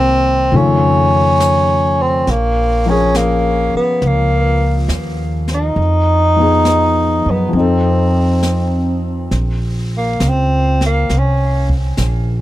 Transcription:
Already playing: upright bass C2, grand piano D#3 A#3 C4 F#4, tenor saxophone C4
0.52 upright bass F2, grand piano C#3 D#3 A3 F4, tenor saxophone C#4, brush sweep
1.40 snare, hi-hat pedal
2.01 tenor saxophone C4
2.27 upright bass A#1, tenor saxophone A#3, brush sweep, snare
2.86 grand piano F3 C#4 A#4, tenor saxophone C#4
2.91 grand piano G#4
3.15 tenor saxophone A#3, snare, hi-hat pedal
3.74 tenor saxophone B3, muted upright bass stroke
4.02 upright bass C#2, brush sweep, snare
4.07 tenor saxophone A#3
4.88 upright bass D#2, snare, hi-hat pedal
5.48 snare
5.55 tenor saxophone D#4
5.76 upright bass F2, brush sweep
6.36 grand piano F3 B3 D#4
6.42 grand piano G#4
6.65 snare, hi-hat pedal
7.26 upright bass F#2
7.30 tenor saxophone B3
7.49 grand piano F3 C4, tenor saxophone B3
7.53 upright bass F2, tenor saxophone C4, grand piano D#4, brush sweep
7.60 grand piano A4
8.43 snare, hi-hat pedal
9.31 upright bass A#1, brush sweep, snare
9.98 tenor saxophone A#3
10.20 upright bass C#2, snare, hi-hat pedal
10.29 tenor saxophone C4
10.81 snare
10.86 tenor saxophone A#3
11.09 upright bass C2, brush sweep, snare
11.18 tenor saxophone C#4
11.70 kick
11.97 upright bass A#1, snare, hi-hat pedal

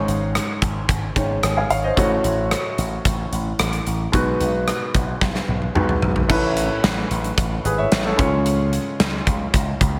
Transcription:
Already playing: grand piano G#2 G#3 C#4 D#4 C#5
0.08 slap bass G#1, closed hi-hat
0.35 cross-stick, closed hi-hat
0.62 slap bass G#1, kick, closed hi-hat
0.89 slap bass G#1, kick, closed hi-hat
1.16 slap bass G#1, grand piano G#3 C#4 D#4 C#5, kick, closed hi-hat
1.43 slap bass G#1, cross-stick, closed hi-hat
1.57 grand piano F5 G#5
1.70 slap bass G#1, grand piano C#5 F5, closed hi-hat
1.84 grand piano C5 D#5
1.96 slap bass A1, grand piano A2 A3 C#4 F#4 C#5, kick, closed hi-hat
2.24 slap bass A1, closed hi-hat
2.51 cross-stick, closed hi-hat
2.78 slap bass A1, closed hi-hat
3.05 slap bass A1, kick, closed hi-hat
3.32 slap bass A1, closed hi-hat
3.59 slap bass A1, cross-stick, closed hi-hat
3.73 closed hi-hat
3.87 slap bass A1, closed hi-hat
4.12 slap bass B1, grand piano B2 G#3 D#4 F#4 B4, kick, closed hi-hat
4.40 slap bass B1, closed hi-hat
4.68 cross-stick, closed hi-hat
4.94 slap bass B1, kick, closed hi-hat
5.21 slap bass B1, kick, snare
5.35 snare
5.48 slap bass B1, high tom
5.62 high tom
5.75 slap bass B1, grand piano G#3 D#4 F#4 B4, mid tom
5.89 mid tom
6.02 slap bass B1, floor tom
6.16 floor tom
6.29 slap bass A1, grand piano A2 A3 C#4 E4 B4, kick, crash
6.57 closed hi-hat
6.84 slap bass A1, snare, closed hi-hat
7.11 slap bass A1, closed hi-hat
7.24 closed hi-hat
7.38 slap bass A1, kick, closed hi-hat
7.65 slap bass G#1, grand piano G#4 B4, closed hi-hat
7.78 grand piano C#5 E5
7.92 slap bass A1, snare, closed hi-hat
8.05 grand piano A4 C#5
8.17 slap bass C#2, grand piano C#3 G#3 C#4 F4 C#5, kick, closed hi-hat
8.46 closed hi-hat
8.73 closed hi-hat
9.00 slap bass C#2, snare, closed hi-hat
9.27 slap bass C#2, kick, closed hi-hat
9.54 slap bass C#2, kick, closed hi-hat
9.81 slap bass C#2, kick, closed hi-hat

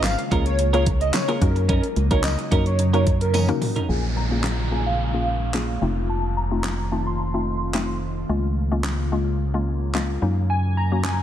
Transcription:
Already playing: fm bass G#1, ambient pad C#3 G#3 A#3 F4, synth pluck A#3 C#4 F4 G#4 C5
0.04 digital synth lead F5, snare, clap, closed hi-hat, tambourine
0.18 muted clean electric guitar stroke, closed hi-hat
0.31 fm bass C#2, synth pluck A#3 C#4 F4 G#4 A#4, clean electric guitar C#4 F4 A#4, kick, closed hi-hat
0.46 digital synth lead C#5, muted clean electric guitar stroke, closed hi-hat
0.59 muted clean electric guitar stroke, closed hi-hat
0.73 synth pluck A#3 C#4 F4 G#4 A#4, clean electric guitar C#4 F4 A#4, digital synth lead C#5, closed hi-hat
0.86 muted clean electric guitar stroke, kick, closed hi-hat
1.01 digital synth lead D#5, muted clean electric guitar stroke, closed hi-hat
1.14 digital synth lead C#5, muted clean electric guitar stroke, snare, clap, closed hi-hat, tambourine
1.28 synth pluck A#3 C#4 F4 G#4 A#4, clean electric guitar C#4 F4 A#4, closed hi-hat
1.41 fm bass F#2, ambient pad C#3 F#3 D#4, synth pluck A#3 C#4 D#4 F#4 A#4, digital synth lead A#4, muted clean electric guitar stroke, kick, closed hi-hat
1.56 muted clean electric guitar stroke, closed hi-hat
1.69 clean electric guitar C#4 D#4 A#4, digital synth lead A#4, kick, closed hi-hat
1.83 muted clean electric guitar stroke, closed hi-hat
1.96 fm bass C#2, muted clean electric guitar stroke, closed hi-hat
2.11 synth pluck A#3 C#4 D#4 F#4 A#4, clean electric guitar C#4 D#4 A#4, digital synth lead C#5, kick, closed hi-hat
2.24 digital synth lead D#5, snare, clap, closed hi-hat, tambourine
2.38 muted clean electric guitar stroke, closed hi-hat
2.51 fm bass F#2, synth pluck A#3 C#4 D#4 F#4 A#4, clean electric guitar C#4 D#4 A#4, kick, closed hi-hat
2.66 digital synth lead C#5, muted clean electric guitar stroke, closed hi-hat
2.79 muted clean electric guitar stroke, closed hi-hat
2.93 synth pluck A#3 C#4 D#4 F#4 A#4, clean electric guitar C#4 D#4 A#4, digital synth lead C#5, closed hi-hat
3.06 muted clean electric guitar stroke, kick, closed hi-hat
3.21 digital synth lead A#4, muted clean electric guitar stroke, closed hi-hat
3.34 clean electric guitar C#4 D#4 A#4, closed hi-hat, high tom, tambourine
3.48 synth pluck A#3 C#4 D#4 F#4 A#4, muted clean electric guitar stroke, closed hi-hat, mid tom
3.61 muted clean electric guitar stroke, mid tom, open hi-hat
3.76 clean electric guitar C#4 D#4 A#4, closed hi-hat, floor tom
3.89 fm bass A#1, ambient pad C#3 G#3 A#3 F4, synth pluck A#3 C#4 F4 G#4, synth bell G#5, downlifter
4.17 synth bell A#5
4.31 synth pluck A#3 C#4 F4 G#4
4.44 snare, clap
4.71 synth pluck A#3 C#4 F4 G#4, synth bell G#5
4.86 synth bell F5
5.14 synth pluck A#3 C#4 F4 G#4
5.54 synth pluck A#3 C#4 F4 G#4, snare, clap
5.82 fm bass F1, ambient pad D#3 A3 C4, synth pluck A3 C4 D#4 F4
6.09 synth bell A5
6.37 synth bell A#5
6.51 synth pluck A3 C4 D#4 F4
6.64 snare, clap
6.92 synth pluck A3 C4 D#4 F4, synth bell A5
7.06 synth bell C6
7.34 synth pluck A3 C4 D#4 F4
7.74 synth pluck A3 C4 D#4 F4, snare, clap
8.29 fm bass C#2, ambient pad C#3 G#3 A#3, synth pluck G#3 A#3 C#4 F4
8.71 synth pluck G#3 A#3 C#4 F4
8.84 snare, clap
9.12 synth pluck G#3 A#3 C#4 F4
9.54 synth pluck G#3 A#3 C#4 F4
9.94 synth pluck G#3 A#3 C#4 F4, snare, clap
10.22 fm bass F#2, ambient pad C#3 F#3 D#4, synth pluck F#3 A#3 C#4 D#4
10.50 synth bell G#5
10.77 synth bell A#5
10.92 synth pluck F#3 A#3 C#4 F#4
11.04 synth bell G#5, snare, clap

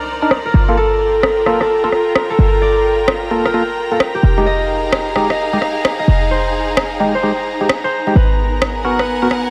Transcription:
Already playing: 808-style bass C2, string section D#4 C5 D5 A#5, harp A#4 C5, analog synth pad A#5, downlifter
0.22 synth stab D4 D#4 A#4
0.31 cross-stick
0.46 harp A#4
0.54 808-style bass G1, string section F4
0.68 synth stab A#3 F4 A4
0.77 harp A4, string section A#4
1.02 string section G5
1.23 cross-stick
1.46 synth stab A#3 F4 A4, cross-stick
1.61 harp A4, cross-stick
1.84 synth stab A#3 F4 A4
1.92 cross-stick
2.15 cross-stick
2.30 harp A4
2.39 808-style bass G1
2.62 harp D5
3.08 cross-stick
3.31 synth stab A#3 F4 A4
3.45 harp A#4, cross-stick
3.54 synth stab A#3 F4 A4
3.92 synth stab A#3 F4 A4
4.00 cross-stick
4.15 harp G4
4.23 808-style bass F1, string section D#4
4.38 synth stab G#3 D#4 G4, string section G#4
4.46 harp D#5, string section F5
4.92 cross-stick
5.16 synth stab G#3 D#4 G4, cross-stick
5.30 harp D#5, cross-stick
5.53 synth stab G#3 D#4 G4
5.62 cross-stick
5.85 cross-stick
5.99 harp D#5
6.08 808-style bass F1
6.31 harp C5
6.77 cross-stick
7.00 synth stab G#3 D#4 G4
7.15 harp C5
7.23 synth stab G#3 D#4 G4
7.61 synth stab G#3 D#4 G4
7.69 cross-stick
7.84 harp C5
8.07 synth stab G#3 D#4 G4
8.15 808-style bass G#1, string section B3, harp B4
8.34 string section A#4
8.62 cross-stick
8.66 string section F#5 G#5
8.85 synth stab B3 F#4 A#4
8.99 harp B4, cross-stick
9.22 synth stab B3 F#4 A#4
9.31 cross-stick

